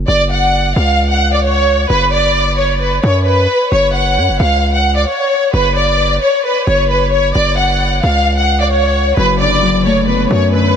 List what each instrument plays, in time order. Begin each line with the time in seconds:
0.08 808-style bass F#1, violin section D5
0.31 violin section F#5
0.76 808-style bass C#2, violin section F5
1.11 violin section F#5
1.33 violin section D5
1.44 violin section C#5
1.89 808-style bass F#1, violin section B4
2.13 violin section D5
2.58 violin section C#5
2.81 violin section B4
3.03 808-style bass F#2, violin section C#5
3.26 violin section B4
3.72 808-style bass F#1, violin section C#5
3.94 violin section F#5
4.17 808-style bass F#2
4.28 808-style bass F#1
4.40 808-style bass C#2, violin section F5
4.74 violin section F#5
4.97 violin section D5
5.08 violin section C#5
5.53 808-style bass F#1, violin section B4
5.77 violin section D5
6.22 violin section C#5
6.45 violin section B4
6.67 808-style bass F#1, violin section C#5
6.90 violin section B4
7.12 violin section C#5
7.35 808-style bass F#1, violin section D5
7.58 violin section F#5
8.03 808-style bass C#2, violin section F5
8.38 violin section F#5
8.61 violin section D5
8.71 violin section C#5
9.17 808-style bass F#1, harp F#2, violin section B4
9.40 harp D3, violin section D5
9.62 harp F#3
9.85 harp A3, violin section C#5
10.08 harp B3, violin section B4
10.30 808-style bass F#2, harp F#2, violin section C#5
10.53 harp D3, violin section B4